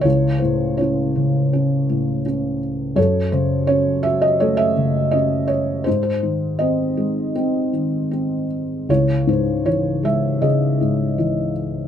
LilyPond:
<<
  \new Staff \with { instrumentName = "Felt piano" } { \time 4/4 \key cis \minor \tempo 4 = 81 << { cis''8 bis'8 cis''2 r4 | cis''8 bis'8 cis''8 e''16 dis''16 cis''16 e''8. dis''8 cis''8 | bis'16 bis'8. dis''4. r4. | cis''8 bis'8 cis''8 e''8 dis''2 | } \\ { e'4 e'2 r4 | a'2 a'2 | dis'4 bis'2 r4 | e'2 gis'2 | } >> }
  \new Staff \with { instrumentName = "Felt piano" } { \clef bass \time 4/4 \key cis \minor cis,8 a,8 cis'8 cis8 cis'8 a,8 cis'4 | fis,8 cis8 cis'8 fis'8 a8 cis8 cis'4 | gis,8 dis8 bis8 gis8 bis8 dis8 bis4 | cis,8 gis,8 e8 gis8 cis8 gis,8 e4 | }
>>